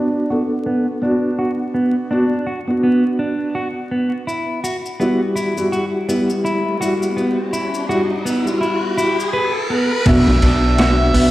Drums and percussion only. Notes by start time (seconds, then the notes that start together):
4.29 maracas
4.65 maracas
4.86 maracas
5.01 maracas
5.37 maracas
5.57 maracas
5.73 maracas
6.09 maracas
6.30 maracas
6.46 maracas
6.82 maracas
7.03 maracas
7.18 maracas
7.53 maracas
7.74 maracas
7.91 maracas
8.26 maracas
8.47 maracas
8.63 maracas
8.98 maracas
9.20 maracas
10.06 kick, crash, ride
10.28 snare
10.42 ride
10.78 snare, ride
11.14 open hi-hat